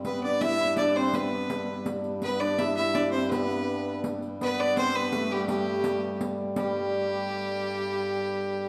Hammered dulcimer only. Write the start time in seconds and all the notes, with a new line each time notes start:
Already playing: C4 D4 E4
0.07 B3
0.25 D4
0.43 E4
0.60 E4
0.79 D4
0.98 C4
1.15 B3
2.25 B3
2.42 D4
2.59 E4
2.79 E4
2.96 D4
3.14 C4
3.26 C4
3.33 B3
4.41 B3
4.59 D4
4.78 C4
4.96 B3
5.14 A3
5.32 G3
5.50 G3
6.57 G3